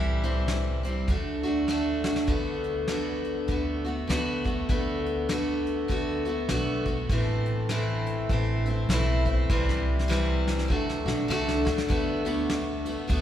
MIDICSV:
0, 0, Header, 1, 4, 480
1, 0, Start_track
1, 0, Tempo, 601202
1, 1822, Time_signature, 4, 2, 24, 8
1, 10549, End_track
2, 0, Start_track
2, 0, Title_t, "Steel-string acoustic guitar"
2, 0, Program_c, 0, 25
2, 0, Note_on_c, 0, 48, 78
2, 0, Note_on_c, 0, 52, 80
2, 0, Note_on_c, 0, 55, 76
2, 0, Note_on_c, 0, 60, 77
2, 0, Note_on_c, 0, 64, 86
2, 178, Note_off_c, 0, 64, 0
2, 181, Note_off_c, 0, 60, 0
2, 186, Note_off_c, 0, 55, 0
2, 188, Note_on_c, 0, 64, 61
2, 190, Note_off_c, 0, 48, 0
2, 190, Note_off_c, 0, 52, 0
2, 190, Note_on_c, 0, 60, 65
2, 196, Note_on_c, 0, 55, 61
2, 200, Note_on_c, 0, 52, 55
2, 201, Note_on_c, 0, 48, 55
2, 655, Note_off_c, 0, 64, 0
2, 664, Note_on_c, 0, 64, 48
2, 669, Note_off_c, 0, 60, 0
2, 674, Note_off_c, 0, 55, 0
2, 676, Note_off_c, 0, 52, 0
2, 677, Note_off_c, 0, 48, 0
2, 679, Note_on_c, 0, 60, 45
2, 690, Note_on_c, 0, 55, 45
2, 857, Note_off_c, 0, 64, 0
2, 859, Note_on_c, 0, 50, 50
2, 864, Note_off_c, 0, 55, 0
2, 864, Note_off_c, 0, 60, 0
2, 868, Note_on_c, 0, 57, 61
2, 876, Note_on_c, 0, 62, 65
2, 881, Note_on_c, 0, 66, 66
2, 1135, Note_off_c, 0, 66, 0
2, 1145, Note_on_c, 0, 66, 56
2, 1148, Note_off_c, 0, 62, 0
2, 1151, Note_off_c, 0, 50, 0
2, 1156, Note_off_c, 0, 57, 0
2, 1158, Note_on_c, 0, 62, 51
2, 1175, Note_on_c, 0, 57, 45
2, 1337, Note_off_c, 0, 66, 0
2, 1344, Note_off_c, 0, 62, 0
2, 1345, Note_off_c, 0, 57, 0
2, 1346, Note_on_c, 0, 50, 72
2, 1355, Note_on_c, 0, 57, 71
2, 1358, Note_on_c, 0, 62, 92
2, 1361, Note_on_c, 0, 66, 88
2, 1621, Note_off_c, 0, 66, 0
2, 1630, Note_on_c, 0, 66, 54
2, 1635, Note_off_c, 0, 50, 0
2, 1635, Note_off_c, 0, 62, 0
2, 1639, Note_off_c, 0, 57, 0
2, 1645, Note_on_c, 0, 62, 46
2, 1656, Note_on_c, 0, 57, 43
2, 1813, Note_off_c, 0, 57, 0
2, 1817, Note_on_c, 0, 50, 67
2, 1820, Note_off_c, 0, 66, 0
2, 1823, Note_on_c, 0, 57, 72
2, 1827, Note_off_c, 0, 62, 0
2, 1831, Note_on_c, 0, 59, 64
2, 1835, Note_on_c, 0, 66, 69
2, 2290, Note_off_c, 0, 50, 0
2, 2299, Note_off_c, 0, 59, 0
2, 2300, Note_on_c, 0, 50, 69
2, 2304, Note_off_c, 0, 57, 0
2, 2308, Note_on_c, 0, 57, 66
2, 2308, Note_on_c, 0, 59, 77
2, 2309, Note_off_c, 0, 66, 0
2, 2319, Note_on_c, 0, 66, 78
2, 2767, Note_off_c, 0, 50, 0
2, 2777, Note_on_c, 0, 50, 62
2, 2785, Note_off_c, 0, 59, 0
2, 2786, Note_off_c, 0, 57, 0
2, 2789, Note_on_c, 0, 57, 61
2, 2790, Note_off_c, 0, 66, 0
2, 2796, Note_on_c, 0, 59, 54
2, 2805, Note_on_c, 0, 66, 65
2, 3061, Note_off_c, 0, 66, 0
2, 3071, Note_off_c, 0, 50, 0
2, 3071, Note_on_c, 0, 66, 50
2, 3073, Note_off_c, 0, 59, 0
2, 3077, Note_off_c, 0, 57, 0
2, 3083, Note_on_c, 0, 59, 47
2, 3098, Note_on_c, 0, 57, 44
2, 3253, Note_on_c, 0, 50, 64
2, 3258, Note_off_c, 0, 57, 0
2, 3261, Note_off_c, 0, 59, 0
2, 3261, Note_off_c, 0, 66, 0
2, 3267, Note_on_c, 0, 57, 73
2, 3270, Note_on_c, 0, 59, 75
2, 3276, Note_on_c, 0, 66, 87
2, 3538, Note_off_c, 0, 66, 0
2, 3548, Note_on_c, 0, 66, 51
2, 3549, Note_off_c, 0, 50, 0
2, 3551, Note_off_c, 0, 59, 0
2, 3556, Note_off_c, 0, 57, 0
2, 3561, Note_on_c, 0, 59, 45
2, 3573, Note_on_c, 0, 57, 43
2, 3740, Note_off_c, 0, 66, 0
2, 3741, Note_off_c, 0, 59, 0
2, 3742, Note_off_c, 0, 57, 0
2, 3742, Note_on_c, 0, 50, 67
2, 3750, Note_on_c, 0, 59, 72
2, 3751, Note_on_c, 0, 57, 75
2, 3757, Note_on_c, 0, 66, 72
2, 4212, Note_off_c, 0, 50, 0
2, 4222, Note_on_c, 0, 50, 75
2, 4226, Note_off_c, 0, 57, 0
2, 4226, Note_off_c, 0, 59, 0
2, 4229, Note_on_c, 0, 57, 71
2, 4230, Note_off_c, 0, 66, 0
2, 4235, Note_on_c, 0, 59, 75
2, 4244, Note_on_c, 0, 66, 87
2, 4687, Note_off_c, 0, 50, 0
2, 4697, Note_on_c, 0, 50, 65
2, 4703, Note_off_c, 0, 59, 0
2, 4705, Note_off_c, 0, 57, 0
2, 4708, Note_on_c, 0, 57, 65
2, 4710, Note_off_c, 0, 66, 0
2, 4713, Note_on_c, 0, 59, 65
2, 4720, Note_on_c, 0, 66, 67
2, 4982, Note_off_c, 0, 66, 0
2, 4991, Note_off_c, 0, 50, 0
2, 4992, Note_on_c, 0, 66, 49
2, 4996, Note_off_c, 0, 57, 0
2, 4998, Note_off_c, 0, 59, 0
2, 5009, Note_on_c, 0, 59, 51
2, 5022, Note_on_c, 0, 57, 44
2, 5177, Note_off_c, 0, 57, 0
2, 5180, Note_on_c, 0, 50, 73
2, 5181, Note_off_c, 0, 66, 0
2, 5182, Note_off_c, 0, 59, 0
2, 5186, Note_on_c, 0, 57, 79
2, 5192, Note_on_c, 0, 59, 85
2, 5198, Note_on_c, 0, 66, 81
2, 5464, Note_off_c, 0, 66, 0
2, 5472, Note_off_c, 0, 50, 0
2, 5474, Note_on_c, 0, 66, 50
2, 5475, Note_off_c, 0, 57, 0
2, 5478, Note_off_c, 0, 59, 0
2, 5491, Note_on_c, 0, 59, 51
2, 5498, Note_on_c, 0, 57, 45
2, 5663, Note_off_c, 0, 66, 0
2, 5671, Note_off_c, 0, 59, 0
2, 5673, Note_on_c, 0, 45, 74
2, 5675, Note_off_c, 0, 57, 0
2, 5680, Note_on_c, 0, 52, 81
2, 5685, Note_on_c, 0, 57, 68
2, 5686, Note_on_c, 0, 60, 76
2, 5690, Note_on_c, 0, 64, 79
2, 6135, Note_off_c, 0, 45, 0
2, 6142, Note_off_c, 0, 52, 0
2, 6144, Note_off_c, 0, 57, 0
2, 6145, Note_on_c, 0, 45, 68
2, 6149, Note_off_c, 0, 60, 0
2, 6150, Note_off_c, 0, 64, 0
2, 6151, Note_on_c, 0, 52, 88
2, 6154, Note_on_c, 0, 57, 77
2, 6159, Note_on_c, 0, 60, 81
2, 6159, Note_on_c, 0, 64, 79
2, 6616, Note_off_c, 0, 52, 0
2, 6623, Note_off_c, 0, 45, 0
2, 6626, Note_off_c, 0, 57, 0
2, 6626, Note_on_c, 0, 52, 64
2, 6630, Note_off_c, 0, 60, 0
2, 6630, Note_off_c, 0, 64, 0
2, 6636, Note_on_c, 0, 57, 65
2, 6646, Note_on_c, 0, 60, 66
2, 6649, Note_on_c, 0, 64, 67
2, 6902, Note_off_c, 0, 64, 0
2, 6912, Note_on_c, 0, 64, 56
2, 6915, Note_off_c, 0, 52, 0
2, 6915, Note_off_c, 0, 60, 0
2, 6920, Note_off_c, 0, 57, 0
2, 6924, Note_on_c, 0, 60, 48
2, 6940, Note_on_c, 0, 57, 45
2, 7101, Note_off_c, 0, 64, 0
2, 7106, Note_on_c, 0, 45, 80
2, 7108, Note_off_c, 0, 60, 0
2, 7109, Note_off_c, 0, 57, 0
2, 7112, Note_on_c, 0, 52, 78
2, 7118, Note_on_c, 0, 57, 73
2, 7126, Note_on_c, 0, 60, 82
2, 7126, Note_on_c, 0, 64, 96
2, 7377, Note_off_c, 0, 64, 0
2, 7386, Note_on_c, 0, 64, 53
2, 7390, Note_off_c, 0, 60, 0
2, 7395, Note_off_c, 0, 45, 0
2, 7398, Note_off_c, 0, 52, 0
2, 7399, Note_on_c, 0, 60, 56
2, 7401, Note_off_c, 0, 57, 0
2, 7410, Note_on_c, 0, 57, 39
2, 7578, Note_off_c, 0, 64, 0
2, 7581, Note_off_c, 0, 60, 0
2, 7582, Note_on_c, 0, 48, 66
2, 7588, Note_off_c, 0, 57, 0
2, 7588, Note_on_c, 0, 52, 77
2, 7591, Note_on_c, 0, 55, 92
2, 7591, Note_on_c, 0, 60, 84
2, 7598, Note_on_c, 0, 64, 81
2, 8038, Note_off_c, 0, 48, 0
2, 8048, Note_on_c, 0, 48, 80
2, 8049, Note_off_c, 0, 52, 0
2, 8051, Note_off_c, 0, 55, 0
2, 8054, Note_off_c, 0, 60, 0
2, 8058, Note_on_c, 0, 52, 89
2, 8059, Note_off_c, 0, 64, 0
2, 8060, Note_on_c, 0, 55, 79
2, 8063, Note_on_c, 0, 60, 91
2, 8069, Note_on_c, 0, 64, 97
2, 8525, Note_off_c, 0, 52, 0
2, 8528, Note_on_c, 0, 50, 64
2, 8535, Note_off_c, 0, 48, 0
2, 8540, Note_off_c, 0, 55, 0
2, 8542, Note_off_c, 0, 60, 0
2, 8543, Note_on_c, 0, 57, 67
2, 8545, Note_off_c, 0, 64, 0
2, 8552, Note_on_c, 0, 62, 63
2, 8557, Note_on_c, 0, 66, 72
2, 8819, Note_off_c, 0, 66, 0
2, 8826, Note_off_c, 0, 50, 0
2, 8828, Note_on_c, 0, 66, 57
2, 8833, Note_off_c, 0, 57, 0
2, 8833, Note_off_c, 0, 62, 0
2, 8843, Note_on_c, 0, 62, 55
2, 8854, Note_on_c, 0, 57, 49
2, 9008, Note_on_c, 0, 50, 80
2, 9012, Note_off_c, 0, 57, 0
2, 9015, Note_off_c, 0, 62, 0
2, 9019, Note_off_c, 0, 66, 0
2, 9022, Note_on_c, 0, 57, 81
2, 9025, Note_on_c, 0, 62, 96
2, 9028, Note_on_c, 0, 66, 96
2, 9291, Note_off_c, 0, 66, 0
2, 9300, Note_on_c, 0, 66, 64
2, 9306, Note_off_c, 0, 50, 0
2, 9307, Note_off_c, 0, 62, 0
2, 9313, Note_off_c, 0, 57, 0
2, 9316, Note_on_c, 0, 62, 50
2, 9324, Note_on_c, 0, 57, 43
2, 9488, Note_on_c, 0, 50, 75
2, 9491, Note_off_c, 0, 57, 0
2, 9495, Note_off_c, 0, 66, 0
2, 9497, Note_off_c, 0, 62, 0
2, 9500, Note_on_c, 0, 59, 69
2, 9501, Note_on_c, 0, 57, 72
2, 9508, Note_on_c, 0, 66, 78
2, 9771, Note_off_c, 0, 66, 0
2, 9778, Note_off_c, 0, 59, 0
2, 9781, Note_off_c, 0, 57, 0
2, 9781, Note_on_c, 0, 66, 61
2, 9786, Note_off_c, 0, 50, 0
2, 9788, Note_on_c, 0, 59, 59
2, 9790, Note_on_c, 0, 57, 64
2, 9799, Note_on_c, 0, 50, 60
2, 10254, Note_off_c, 0, 66, 0
2, 10263, Note_on_c, 0, 66, 52
2, 10267, Note_off_c, 0, 59, 0
2, 10276, Note_off_c, 0, 50, 0
2, 10277, Note_on_c, 0, 59, 48
2, 10285, Note_off_c, 0, 57, 0
2, 10288, Note_on_c, 0, 57, 41
2, 10438, Note_off_c, 0, 57, 0
2, 10440, Note_on_c, 0, 50, 56
2, 10448, Note_on_c, 0, 57, 64
2, 10451, Note_off_c, 0, 59, 0
2, 10457, Note_off_c, 0, 66, 0
2, 10460, Note_on_c, 0, 59, 65
2, 10466, Note_on_c, 0, 66, 66
2, 10549, Note_off_c, 0, 50, 0
2, 10549, Note_off_c, 0, 57, 0
2, 10549, Note_off_c, 0, 59, 0
2, 10549, Note_off_c, 0, 66, 0
2, 10549, End_track
3, 0, Start_track
3, 0, Title_t, "Upright bass"
3, 0, Program_c, 1, 32
3, 0, Note_on_c, 1, 36, 79
3, 829, Note_off_c, 1, 36, 0
3, 863, Note_on_c, 1, 38, 91
3, 1791, Note_off_c, 1, 38, 0
3, 1818, Note_on_c, 1, 38, 72
3, 2748, Note_off_c, 1, 38, 0
3, 2785, Note_on_c, 1, 38, 76
3, 3240, Note_off_c, 1, 38, 0
3, 3265, Note_on_c, 1, 38, 81
3, 3720, Note_off_c, 1, 38, 0
3, 3749, Note_on_c, 1, 38, 81
3, 4674, Note_off_c, 1, 38, 0
3, 4703, Note_on_c, 1, 38, 79
3, 5159, Note_off_c, 1, 38, 0
3, 5186, Note_on_c, 1, 35, 93
3, 5640, Note_off_c, 1, 35, 0
3, 5665, Note_on_c, 1, 33, 84
3, 6591, Note_off_c, 1, 33, 0
3, 6623, Note_on_c, 1, 33, 83
3, 7078, Note_off_c, 1, 33, 0
3, 7096, Note_on_c, 1, 35, 94
3, 7555, Note_off_c, 1, 35, 0
3, 7583, Note_on_c, 1, 36, 89
3, 8510, Note_off_c, 1, 36, 0
3, 8543, Note_on_c, 1, 38, 83
3, 8819, Note_off_c, 1, 38, 0
3, 8824, Note_on_c, 1, 35, 79
3, 8998, Note_off_c, 1, 35, 0
3, 9018, Note_on_c, 1, 36, 81
3, 9281, Note_off_c, 1, 36, 0
3, 9306, Note_on_c, 1, 38, 81
3, 9479, Note_off_c, 1, 38, 0
3, 9499, Note_on_c, 1, 38, 81
3, 10428, Note_off_c, 1, 38, 0
3, 10456, Note_on_c, 1, 38, 86
3, 10549, Note_off_c, 1, 38, 0
3, 10549, End_track
4, 0, Start_track
4, 0, Title_t, "Drums"
4, 193, Note_on_c, 9, 42, 50
4, 273, Note_off_c, 9, 42, 0
4, 383, Note_on_c, 9, 38, 79
4, 383, Note_on_c, 9, 42, 61
4, 462, Note_off_c, 9, 38, 0
4, 462, Note_off_c, 9, 42, 0
4, 672, Note_on_c, 9, 42, 58
4, 752, Note_off_c, 9, 42, 0
4, 863, Note_on_c, 9, 36, 59
4, 863, Note_on_c, 9, 42, 64
4, 943, Note_off_c, 9, 36, 0
4, 943, Note_off_c, 9, 42, 0
4, 1154, Note_on_c, 9, 42, 43
4, 1234, Note_off_c, 9, 42, 0
4, 1338, Note_on_c, 9, 38, 53
4, 1418, Note_off_c, 9, 38, 0
4, 1628, Note_on_c, 9, 38, 67
4, 1708, Note_off_c, 9, 38, 0
4, 1723, Note_on_c, 9, 38, 62
4, 1803, Note_off_c, 9, 38, 0
4, 1811, Note_on_c, 9, 42, 50
4, 1820, Note_on_c, 9, 36, 73
4, 1891, Note_off_c, 9, 42, 0
4, 1900, Note_off_c, 9, 36, 0
4, 2107, Note_on_c, 9, 42, 42
4, 2187, Note_off_c, 9, 42, 0
4, 2296, Note_on_c, 9, 38, 75
4, 2296, Note_on_c, 9, 42, 50
4, 2375, Note_off_c, 9, 38, 0
4, 2375, Note_off_c, 9, 42, 0
4, 2590, Note_on_c, 9, 42, 48
4, 2670, Note_off_c, 9, 42, 0
4, 2781, Note_on_c, 9, 42, 51
4, 2783, Note_on_c, 9, 36, 53
4, 2861, Note_off_c, 9, 42, 0
4, 2863, Note_off_c, 9, 36, 0
4, 3079, Note_on_c, 9, 42, 44
4, 3159, Note_off_c, 9, 42, 0
4, 3272, Note_on_c, 9, 38, 88
4, 3272, Note_on_c, 9, 42, 69
4, 3351, Note_off_c, 9, 38, 0
4, 3351, Note_off_c, 9, 42, 0
4, 3557, Note_on_c, 9, 36, 60
4, 3559, Note_on_c, 9, 42, 49
4, 3637, Note_off_c, 9, 36, 0
4, 3639, Note_off_c, 9, 42, 0
4, 3748, Note_on_c, 9, 36, 76
4, 3751, Note_on_c, 9, 42, 56
4, 3828, Note_off_c, 9, 36, 0
4, 3831, Note_off_c, 9, 42, 0
4, 4041, Note_on_c, 9, 42, 45
4, 4121, Note_off_c, 9, 42, 0
4, 4225, Note_on_c, 9, 38, 80
4, 4225, Note_on_c, 9, 42, 63
4, 4305, Note_off_c, 9, 38, 0
4, 4305, Note_off_c, 9, 42, 0
4, 4523, Note_on_c, 9, 42, 47
4, 4603, Note_off_c, 9, 42, 0
4, 4706, Note_on_c, 9, 36, 60
4, 4707, Note_on_c, 9, 42, 55
4, 4786, Note_off_c, 9, 36, 0
4, 4787, Note_off_c, 9, 42, 0
4, 4994, Note_on_c, 9, 42, 45
4, 5074, Note_off_c, 9, 42, 0
4, 5179, Note_on_c, 9, 38, 83
4, 5179, Note_on_c, 9, 42, 66
4, 5259, Note_off_c, 9, 38, 0
4, 5259, Note_off_c, 9, 42, 0
4, 5472, Note_on_c, 9, 42, 43
4, 5475, Note_on_c, 9, 36, 54
4, 5552, Note_off_c, 9, 42, 0
4, 5555, Note_off_c, 9, 36, 0
4, 5665, Note_on_c, 9, 36, 79
4, 5665, Note_on_c, 9, 42, 55
4, 5745, Note_off_c, 9, 36, 0
4, 5745, Note_off_c, 9, 42, 0
4, 5952, Note_on_c, 9, 42, 48
4, 6032, Note_off_c, 9, 42, 0
4, 6140, Note_on_c, 9, 38, 71
4, 6140, Note_on_c, 9, 42, 54
4, 6220, Note_off_c, 9, 38, 0
4, 6220, Note_off_c, 9, 42, 0
4, 6437, Note_on_c, 9, 42, 48
4, 6517, Note_off_c, 9, 42, 0
4, 6622, Note_on_c, 9, 36, 62
4, 6624, Note_on_c, 9, 42, 51
4, 6702, Note_off_c, 9, 36, 0
4, 6704, Note_off_c, 9, 42, 0
4, 6916, Note_on_c, 9, 42, 46
4, 6996, Note_off_c, 9, 42, 0
4, 7103, Note_on_c, 9, 38, 90
4, 7103, Note_on_c, 9, 42, 67
4, 7182, Note_off_c, 9, 38, 0
4, 7182, Note_off_c, 9, 42, 0
4, 7394, Note_on_c, 9, 36, 58
4, 7394, Note_on_c, 9, 42, 46
4, 7474, Note_off_c, 9, 36, 0
4, 7474, Note_off_c, 9, 42, 0
4, 7582, Note_on_c, 9, 36, 89
4, 7584, Note_on_c, 9, 38, 43
4, 7662, Note_off_c, 9, 36, 0
4, 7664, Note_off_c, 9, 38, 0
4, 7736, Note_on_c, 9, 38, 41
4, 7816, Note_off_c, 9, 38, 0
4, 7978, Note_on_c, 9, 38, 45
4, 8058, Note_off_c, 9, 38, 0
4, 8073, Note_on_c, 9, 38, 58
4, 8153, Note_off_c, 9, 38, 0
4, 8363, Note_on_c, 9, 38, 65
4, 8443, Note_off_c, 9, 38, 0
4, 8455, Note_on_c, 9, 38, 53
4, 8535, Note_off_c, 9, 38, 0
4, 8544, Note_on_c, 9, 36, 63
4, 8623, Note_off_c, 9, 36, 0
4, 8698, Note_on_c, 9, 38, 57
4, 8778, Note_off_c, 9, 38, 0
4, 8844, Note_on_c, 9, 38, 70
4, 8924, Note_off_c, 9, 38, 0
4, 9030, Note_on_c, 9, 38, 83
4, 9110, Note_off_c, 9, 38, 0
4, 9170, Note_on_c, 9, 38, 67
4, 9250, Note_off_c, 9, 38, 0
4, 9313, Note_on_c, 9, 38, 76
4, 9393, Note_off_c, 9, 38, 0
4, 9405, Note_on_c, 9, 38, 69
4, 9485, Note_off_c, 9, 38, 0
4, 9498, Note_on_c, 9, 51, 52
4, 9500, Note_on_c, 9, 36, 76
4, 9577, Note_off_c, 9, 51, 0
4, 9579, Note_off_c, 9, 36, 0
4, 9788, Note_on_c, 9, 51, 46
4, 9868, Note_off_c, 9, 51, 0
4, 9977, Note_on_c, 9, 38, 80
4, 9977, Note_on_c, 9, 51, 60
4, 10056, Note_off_c, 9, 38, 0
4, 10056, Note_off_c, 9, 51, 0
4, 10264, Note_on_c, 9, 51, 47
4, 10343, Note_off_c, 9, 51, 0
4, 10452, Note_on_c, 9, 51, 57
4, 10456, Note_on_c, 9, 36, 64
4, 10532, Note_off_c, 9, 51, 0
4, 10536, Note_off_c, 9, 36, 0
4, 10549, End_track
0, 0, End_of_file